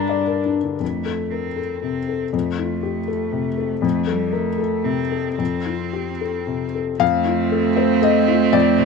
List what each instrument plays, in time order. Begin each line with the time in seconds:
Already playing: felt piano G2 D4 A#4 D5 A#5, cello G3, viola D4
0.09 felt piano D5
0.27 felt piano A#4
0.45 felt piano D4
0.64 felt piano D3
0.80 felt piano F2, cello A3
1.06 felt piano A4
1.31 cello C4, felt piano A#4
1.56 felt piano A4
1.83 felt piano C3, cello C4
2.08 felt piano A4
2.33 felt piano F2, cello A3
2.58 cello A3, felt piano F4
2.83 felt piano G4
3.08 felt piano A4
3.32 felt piano C3
3.57 felt piano A4
3.81 felt piano F2, cello A3
4.07 cello G3, felt piano A4
4.32 cello A3, felt piano A#4
4.58 felt piano A4
4.84 felt piano C3, cello C4
5.11 felt piano A4
5.38 felt piano F2, cello C4
5.66 felt piano F4
5.93 felt piano G4
6.21 felt piano A4
6.47 felt piano C3
6.75 felt piano A4
7.00 felt piano F2 F5, cello A3, viola C4
7.25 felt piano F4
7.52 felt piano A4
7.76 felt piano C5
8.02 felt piano A4 D#5
8.28 felt piano F4
8.53 felt piano F2 D5
8.78 felt piano C3